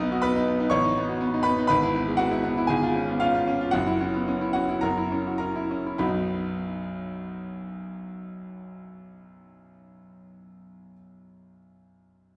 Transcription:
0.00 0.69 B1 loud
0.00 0.18 B3 medium
0.00 0.36 D#4 medium
0.00 0.19 D#5 loud
0.00 0.22 D#6 loud
0.12 0.30 F#4 loud
0.22 0.42 B3 medium
0.22 0.68 B4 loud
0.22 0.71 B5 loud
0.36 0.54 D#4 medium
0.47 0.66 B3 medium
0.60 0.71 D#4 medium
0.70 1.67 A1 loud
0.70 1.41 C#5 loud
0.70 1.44 C#6 loud
0.84 1.03 D#4 medium
0.97 1.16 B3 medium
1.08 1.28 F#4 medium
1.21 1.40 B3 medium
1.34 1.53 D#4 medium
1.43 1.65 B3 medium
1.43 1.67 B4 loud
1.43 1.66 B5 loud
1.58 1.70 D#4 medium
1.67 2.67 G#1 loud
1.67 2.16 B4 loud
1.67 2.18 B5 loud
1.82 2.02 E4 medium
1.95 2.15 B3 medium
2.08 2.27 G#3 medium
2.17 2.39 B3 medium
2.17 2.66 F#4 loud
2.17 2.69 F#5 loud
2.31 2.52 E4 medium
2.44 2.64 B3 medium
2.57 2.70 E4 medium
2.67 3.71 G#1 loud
2.67 3.17 G#4 medium
2.67 3.20 G#5 loud
2.83 3.03 F4 medium
2.95 3.16 C#4 medium
3.09 3.29 B3 medium
3.20 3.43 C#4 medium
3.20 3.33 F4 medium
3.20 3.74 F5 loud
3.35 3.56 F4 medium
3.47 3.69 C#4 medium
3.61 3.74 F4 medium
3.71 4.80 F#1 loud
3.71 4.51 F#4 medium
3.71 4.52 F#5 loud
3.87 4.09 E4 medium
4.01 4.23 C#4 medium
4.14 4.36 B3 medium
4.28 4.50 C#4 medium
4.41 4.64 E4 medium
4.53 4.78 C#4 medium
4.53 4.81 F#4 medium
4.53 4.82 F#5 loud
4.69 4.83 E4 medium
4.81 5.97 F#1 medium
4.81 5.36 A#4 medium
4.81 5.36 A#5 loud
4.98 5.21 E4 medium
5.12 5.35 C#4 medium
5.27 5.50 F#4 medium
5.38 5.65 C#4 medium
5.38 5.96 A#4 medium
5.38 6.00 A#5 loud
5.56 5.80 E4 medium
5.71 5.95 C#4 medium
5.86 6.01 E4 medium
5.98 10.93 B1 medium
5.98 10.93 F#2 medium
5.98 10.93 F#3 medium
5.98 10.93 B3 medium
5.98 10.93 D#4 medium
5.98 10.94 F#4 medium
5.98 10.92 B5 medium

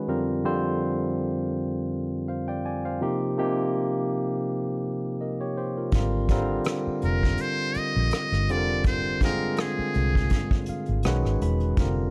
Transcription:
0.08 0.39 F2 medium
0.08 0.39 D3 medium
0.08 0.39 G3 medium
0.08 0.39 C4 medium
0.08 0.39 F4 medium
0.08 0.40 A#4 medium
0.44 1.69 F2 medium
0.44 1.69 D3 medium
0.44 1.70 G3 medium
0.44 1.70 C4 medium
0.44 1.70 F4 medium
0.44 1.70 C5 medium
2.28 2.47 C5 soft
2.28 2.46 F5 medium
2.48 2.63 D5 medium
2.48 2.63 G5 medium
2.65 2.83 D5 soft
2.65 2.83 G#5 medium
2.85 3.19 C5 soft
2.85 3.19 F5 medium
3.01 3.32 C3 medium
3.01 3.32 F3 medium
3.01 3.32 A#3 medium
3.01 3.32 D#4 medium
3.01 3.33 G4 medium
3.37 4.62 C3 medium
3.37 4.63 F3 medium
3.37 4.63 A#3 medium
3.37 4.63 D#4 medium
3.37 4.63 G4 medium
5.21 5.39 A#4 soft
5.21 5.39 D#5 soft
5.41 5.56 G4 soft
5.41 5.56 C#5 medium
5.57 5.76 G4 soft
5.57 5.75 C5 medium
5.77 5.94 F4 soft
5.77 5.95 A#4 soft
5.92 6.58 G#1 medium
5.92 6.25 D3 medium
5.92 6.25 G3 medium
5.92 6.25 C4 medium
5.92 6.25 F4 medium
5.92 kick medium
5.92 closed hi-hat medium
5.96 6.25 A#4 medium
6.29 7.55 D3 medium
6.29 7.55 G3 medium
6.29 7.55 C4 medium
6.29 7.55 F4 medium
6.29 7.56 A#4 medium
6.29 kick medium
6.29 closed hi-hat medium
6.64 cross-stick medium
6.64 closed hi-hat medium
6.87 muted fingered electric bass stroke soft
7.02 7.35 F1 medium
7.02 7.43 A#4 medium
7.02 closed hi-hat soft
7.23 kick medium
7.38 7.79 C5 medium
7.38 closed hi-hat medium
7.74 8.53 D#5 loud
7.74 muted fingered electric bass stroke soft
7.74 closed hi-hat medium
7.96 8.11 A#1 medium
8.11 cross-stick medium
8.11 closed hi-hat medium
8.32 8.49 G1 medium
8.32 cross-stick soft
8.49 9.47 F1 medium
8.49 9.12 D3 medium
8.49 9.12 G3 medium
8.49 9.12 C4 medium
8.49 9.12 F4 medium
8.49 8.57 A4 medium
8.49 8.86 D5 loud
8.49 closed hi-hat medium
8.58 9.16 A#4 medium
8.84 9.20 C5 medium
8.84 kick medium
8.84 closed hi-hat medium
9.21 10.47 D3 medium
9.21 10.48 G#3 medium
9.21 10.48 C4 medium
9.21 10.48 F4 medium
9.21 10.48 G#4 medium
9.21 9.62 A#4 medium
9.21 kick medium
9.21 closed hi-hat medium
9.57 10.69 G#4 medium
9.57 cross-stick medium
9.57 closed hi-hat medium
9.79 muted fingered electric bass stroke soft
9.94 10.28 C2 medium
9.94 closed hi-hat soft
10.15 kick medium
10.29 kick medium
10.29 closed hi-hat medium
10.51 kick medium
10.66 11.03 F5 medium
10.66 muted fingered electric bass stroke soft
10.66 closed hi-hat medium
10.86 11.03 G#1 medium
10.86 closed hi-hat soft
11.03 11.22 B1 medium
11.03 11.68 D#3 medium
11.03 11.68 G#3 medium
11.03 11.68 C#4 medium
11.03 11.68 F#4 medium
11.03 11.69 B4 medium
11.03 11.39 F#5 medium
11.03 cross-stick medium
11.03 closed hi-hat medium
11.25 11.40 G#1 medium
11.25 cross-stick soft
11.41 11.74 E1 medium
11.41 11.76 B5 medium
11.41 closed hi-hat medium
11.60 closed hi-hat soft
11.77 12.10 F1 medium
11.77 12.09 D3 medium
11.77 12.10 G3 medium
11.77 12.10 C4 medium
11.77 12.10 F4 medium
11.77 12.10 A#4 medium
11.77 kick medium
11.77 closed hi-hat medium

